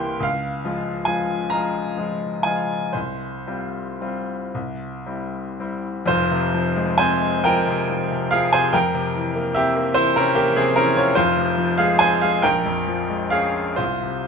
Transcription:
0.00 0.27 C2 medium
0.00 0.27 E3 medium
0.00 0.27 A#3 medium
0.00 0.26 G4 medium
0.00 0.24 G5 medium
0.00 0.26 C6 loud
0.20 0.61 C#2 medium
0.20 1.06 F5 medium
0.64 1.03 F3 soft
0.64 1.03 G#3 soft
0.64 1.03 F4 medium
1.05 1.47 F3 soft
1.05 1.47 G#3 soft
1.05 1.47 F4 soft
1.05 1.50 G#5 medium
1.50 1.93 F3 soft
1.50 1.94 G#3 soft
1.50 1.94 F4 medium
1.50 2.44 A#5 medium
1.97 2.41 F3 soft
1.97 2.41 G#3 soft
1.97 2.41 F4 soft
2.43 2.91 F3 soft
2.43 2.91 G#3 soft
2.43 2.91 F4 medium
2.43 2.94 G#5 medium
2.93 3.45 C2 soft
2.93 4.53 C5 medium
3.47 3.97 G3 soft
3.47 3.97 C4 soft
3.47 3.97 F4 soft
4.01 4.50 G3 soft
4.01 4.50 C4 soft
4.01 4.51 F4 soft
4.54 5.05 C2 medium
5.06 5.55 G3 soft
5.06 5.55 C4 soft
5.06 5.55 E4 soft
5.60 6.05 G3 soft
5.60 6.05 C4 soft
5.60 6.05 E4 soft
6.06 8.69 F1 medium
6.06 8.68 F2 medium
6.06 6.95 F4 medium
6.06 6.97 C5 loud
6.32 6.67 C3 medium
6.54 6.90 F3 medium
6.76 7.12 G#3 medium
6.98 7.35 C4 medium
6.98 7.41 C5 medium
6.98 7.44 G#5 loud
7.22 7.58 G#3 medium
7.44 7.81 F3 medium
7.44 8.28 A#4 medium
7.44 8.31 G5 loud
7.67 8.02 C3 medium
7.90 8.24 F3 medium
8.12 8.45 C3 soft
8.31 8.66 F3 medium
8.31 8.51 G#4 medium
8.31 8.52 F5 loud
8.53 8.74 C3 medium
8.53 8.73 C5 medium
8.53 8.73 G#5 loud
8.73 11.13 F2 medium
8.73 9.51 A#4 medium
8.73 9.55 G5 loud
8.95 9.27 C3 medium
9.15 9.47 E3 medium
9.36 9.68 A#3 medium
9.54 9.88 C4 medium
9.54 9.93 G4 medium
9.54 9.95 E5 loud
9.76 10.08 A#3 medium
9.94 10.28 E3 medium
9.94 10.15 E4 medium
9.94 10.15 C5 loud
10.16 10.49 C3 medium
10.16 10.36 C#4 medium
10.16 10.36 A#4 loud
10.35 10.69 E3 medium
10.35 10.55 A#3 medium
10.35 10.56 G4 loud
10.56 10.89 C3 medium
10.56 10.76 C4 medium
10.56 10.77 G#4 loud
10.76 11.09 E3 medium
10.76 10.96 C#4 medium
10.76 10.96 A#4 loud
10.96 11.17 C3 medium
10.96 11.15 F4 medium
10.96 11.16 C#5 loud
11.15 12.39 F1 medium
11.15 12.40 F2 medium
11.15 11.74 F4 medium
11.15 11.77 C5 loud
11.37 11.70 C3 medium
11.58 11.91 F3 medium
11.78 12.13 G#3 medium
11.78 11.99 G#4 medium
11.78 11.99 F5 loud
11.99 12.35 C4 medium
11.99 12.20 C5 medium
11.99 12.21 G#5 loud
12.21 12.44 G#3 medium
12.21 12.42 G#4 medium
12.21 12.43 F5 medium
12.42 13.75 A#1 medium
12.42 13.28 A#4 medium
12.42 13.32 G5 loud
12.66 13.01 F2 medium
12.87 13.23 F3 medium
13.09 13.46 G#3 soft
13.30 13.69 C#4 medium
13.30 13.75 G#4 medium
13.30 13.78 F5 medium
13.54 13.76 F4 medium
13.76 14.27 C2 medium
13.76 14.27 F4 medium
13.76 14.27 C5 medium
14.03 14.27 C3 soft

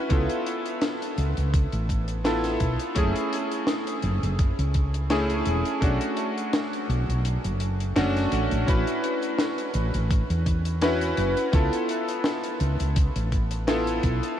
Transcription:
0.00 0.12 C#4 medium
0.00 0.10 E4 medium
0.00 0.13 F#4 medium
0.00 0.12 B4 medium
0.09 0.26 C#2 medium
0.09 2.20 B3 medium
0.09 2.21 E4 medium
0.09 2.21 F4 medium
0.09 2.22 A4 medium
0.09 kick loud
0.09 closed hi-hat medium
0.30 closed hi-hat medium
0.47 closed hi-hat medium
0.66 closed hi-hat soft
0.81 snare loud
0.81 closed hi-hat medium
1.02 closed hi-hat medium
1.18 1.33 C#2 medium
1.18 closed hi-hat medium
1.37 1.65 C#2 medium
1.37 closed hi-hat soft
1.54 kick loud
1.54 closed hi-hat loud
1.72 2.55 A1 medium
1.72 closed hi-hat medium
1.89 kick medium
1.89 closed hi-hat medium
2.08 closed hi-hat soft
2.25 2.92 B3 medium
2.25 2.93 E4 medium
2.25 2.93 F4 medium
2.25 2.93 A4 medium
2.25 snare loud
2.25 closed hi-hat medium
2.44 snare soft
2.44 closed hi-hat medium
2.60 2.76 B1 medium
2.60 kick medium
2.60 closed hi-hat medium
2.80 closed hi-hat medium
2.95 3.12 F#1 loud
2.95 5.06 A3 medium
2.95 5.07 C#4 medium
2.95 5.07 E4 medium
2.95 5.08 G#4 medium
2.95 kick loud
2.95 closed hi-hat loud
3.16 closed hi-hat medium
3.33 closed hi-hat medium
3.52 closed hi-hat medium
3.67 snare loud
3.67 closed hi-hat loud
3.87 closed hi-hat medium
4.03 4.19 F#1 medium
4.03 closed hi-hat soft
4.23 4.51 F#1 medium
4.23 closed hi-hat medium
4.39 kick loud
4.39 closed hi-hat medium
4.59 5.41 C#2 medium
4.59 closed hi-hat medium
4.74 kick medium
4.74 closed hi-hat medium
4.94 closed hi-hat medium
5.10 5.78 A3 medium
5.10 5.78 C#4 medium
5.10 5.78 E4 medium
5.10 5.79 G#4 medium
5.10 snare loud
5.10 closed hi-hat medium
5.30 closed hi-hat medium
5.46 5.62 E1 medium
5.46 closed hi-hat medium
5.65 closed hi-hat medium
5.81 5.98 B1 loud
5.81 7.92 A3 medium
5.81 7.92 C#4 medium
5.81 7.93 D4 medium
5.81 7.93 F#4 medium
5.81 kick loud
5.81 closed hi-hat medium
6.01 closed hi-hat medium
6.17 closed hi-hat medium
6.38 closed hi-hat medium
6.53 snare loud
6.53 closed hi-hat loud
6.73 closed hi-hat soft
6.89 7.05 B1 medium
6.89 closed hi-hat medium
7.09 7.36 B1 medium
7.09 closed hi-hat medium
7.25 closed hi-hat medium
7.44 7.96 F#1 medium
7.44 closed hi-hat medium
7.60 closed hi-hat medium
7.80 closed hi-hat medium
7.95 8.25 F#1 loud
7.95 8.63 A3 medium
7.95 8.64 C#4 medium
7.95 8.64 D4 medium
7.95 8.64 F#4 loud
7.95 snare loud
7.95 closed hi-hat loud
8.16 snare soft
8.16 closed hi-hat medium
8.32 8.48 A1 medium
8.32 closed hi-hat medium
8.51 8.65 A1 loud
8.51 closed hi-hat medium
8.66 8.83 A1 medium
8.66 10.77 C#4 medium
8.66 10.78 E4 medium
8.66 10.78 F#4 medium
8.66 10.79 B4 medium
8.66 kick loud
8.66 closed hi-hat loud
8.66 cabasa medium
8.87 closed hi-hat medium
8.87 cabasa soft
9.04 closed hi-hat medium
9.22 closed hi-hat medium
9.22 cabasa medium
9.39 snare loud
9.39 closed hi-hat loud
9.39 cabasa medium
9.58 closed hi-hat medium
9.58 cabasa soft
9.74 9.90 A1 medium
9.74 closed hi-hat medium
9.94 10.22 A1 medium
9.94 closed hi-hat medium
9.94 cabasa medium
10.10 kick loud
10.10 closed hi-hat medium
10.10 cabasa medium
10.30 11.12 E2 medium
10.30 closed hi-hat medium
10.30 cabasa soft
10.46 kick medium
10.46 closed hi-hat medium
10.65 closed hi-hat medium
10.65 cabasa medium
10.81 11.49 C#4 medium
10.81 11.50 E4 medium
10.81 11.50 F#4 medium
10.81 11.50 B4 loud
10.81 snare loud
10.81 closed hi-hat loud
10.81 cabasa medium
11.01 closed hi-hat medium
11.01 cabasa soft
11.17 11.33 F#1 medium
11.17 closed hi-hat medium
11.37 closed hi-hat medium
11.37 cabasa medium
11.52 11.69 C#2 loud
11.52 13.63 B3 medium
11.52 13.64 E4 medium
11.52 13.64 F4 medium
11.52 13.65 A4 medium
11.52 kick loud
11.52 closed hi-hat loud
11.52 cabasa medium
11.72 closed hi-hat medium
11.72 cabasa medium
11.89 closed hi-hat medium
12.08 closed hi-hat medium
12.08 cabasa medium
12.24 snare loud
12.24 closed hi-hat medium
12.24 cabasa medium
12.44 closed hi-hat medium
12.44 cabasa medium
12.60 12.76 C#2 medium
12.60 closed hi-hat medium
12.79 13.08 C#2 medium
12.79 closed hi-hat medium
12.79 cabasa medium
12.96 kick loud
12.96 closed hi-hat loud
12.96 cabasa medium
13.16 13.98 A1 medium
13.16 closed hi-hat medium
13.16 cabasa soft
13.32 kick medium
13.32 closed hi-hat medium
13.51 closed hi-hat medium
13.51 cabasa medium
13.67 14.35 B3 medium
13.67 14.35 E4 medium
13.67 14.36 F4 medium
13.67 14.36 A4 medium
13.67 snare loud
13.67 closed hi-hat loud
13.67 cabasa medium
13.87 closed hi-hat medium
13.87 cabasa soft
14.03 14.19 B1 medium
14.03 kick medium
14.03 closed hi-hat medium
14.23 closed hi-hat medium
14.23 cabasa medium

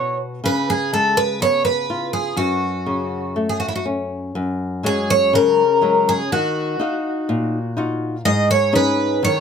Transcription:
0.00 0.40 B2 medium
0.00 0.42 F#4 medium
0.00 0.16 C#5 medium
0.44 2.33 C#3 medium
0.44 0.70 B4 medium
0.70 0.93 G#4 medium
0.93 1.39 G#3 medium
0.93 1.18 A4 medium
1.17 1.42 B4 medium
1.40 1.87 B3 medium
1.40 1.64 C#5 medium
1.65 2.13 B4 medium
1.90 2.36 F4 medium
2.13 2.37 G#4 medium
2.36 4.31 F#2 medium
2.36 3.44 F#4 medium
2.86 3.34 C#3 soft
3.36 3.84 A3 medium
3.49 3.58 G#4 medium
3.60 3.68 F#4 medium
3.69 3.75 E4 medium
3.76 3.85 F#4 medium
3.86 4.34 C#4 medium
4.35 5.31 F#2 medium
4.83 5.63 F#3 soft
4.83 5.63 G#3 soft
4.83 5.63 C#4 medium
4.83 5.11 G#4 medium
5.10 5.35 C#5 medium
5.33 6.29 C#3 medium
5.33 6.10 A#4 medium
5.81 6.21 F#3 soft
5.81 6.21 G#3 soft
5.81 6.22 C#4 soft
6.09 6.32 G#4 medium
6.32 6.79 D#3 medium
6.32 7.73 F#4 medium
6.79 7.57 D#4 medium
6.79 7.58 F#4 medium
6.79 7.58 F5 soft
7.29 8.23 A#2 medium
7.77 8.16 D#4 soft
7.77 8.16 F4 soft
7.77 8.16 F#4 medium
8.25 9.19 G#2 medium
8.25 8.50 D#5 medium
8.51 8.75 C#5 medium
8.73 9.40 C#4 medium
8.73 9.40 D#4 soft
8.73 9.40 G#4 medium
8.73 9.24 B4 medium
9.23 9.40 D#3 medium
9.23 9.40 C#5 medium

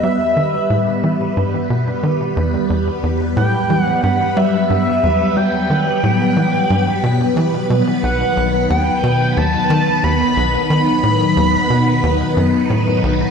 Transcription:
0.00 7.99 G3 medium
0.00 0.24 G3 medium
0.00 13.30 B3 medium
0.00 13.30 B4 medium
0.00 2.66 E5 medium
0.00 1.33 E5 loud
0.37 0.57 D#3 medium
0.70 0.91 A2 loud
1.04 1.34 E3 medium
1.37 1.57 G2 medium
1.70 1.91 B2 medium
2.03 2.34 D#3 medium
2.37 2.57 E2 loud
2.70 2.91 E2 medium
2.70 7.99 F#3 medium
3.03 3.34 E2 medium
3.37 3.57 A2 loud
3.37 3.81 G5 loud
3.70 4.01 E3 medium
3.81 4.03 F#5 loud
4.03 4.24 G2 loud
4.03 4.38 F#5 loud
4.37 4.57 G3 loud
4.37 5.38 E5 loud
4.70 4.91 G2 loud
5.03 5.24 E2 loud
5.36 5.57 G3 medium
5.36 7.70 G5 loud
5.70 5.91 D#3 medium
6.03 6.24 A2 loud
6.37 6.67 E3 medium
6.70 6.91 G2 loud
7.03 7.24 B2 medium
7.37 7.57 E3 medium
7.70 7.82 B2 medium
8.03 8.24 B1 medium
8.03 13.30 D#3 medium
8.03 13.30 F#3 medium
8.03 8.66 F#5 medium
8.37 8.67 B1 medium
8.70 8.91 D#2 loud
8.70 9.39 G5 medium
9.04 9.34 B2 medium
9.37 9.57 D#2 loud
9.37 10.05 A5 loud
9.70 9.91 D#3 loud
10.04 10.24 D#2 loud
10.04 10.70 B5 loud
10.37 10.57 B1 loud
10.70 10.91 D#3 medium
10.70 12.66 B5 loud
11.04 11.24 A2 medium
11.37 11.57 D#2 loud
11.70 12.01 B2 medium
12.03 12.24 D#2 loud
12.37 12.57 F#2 medium
12.70 13.01 A2 medium
13.03 13.24 B1 loud

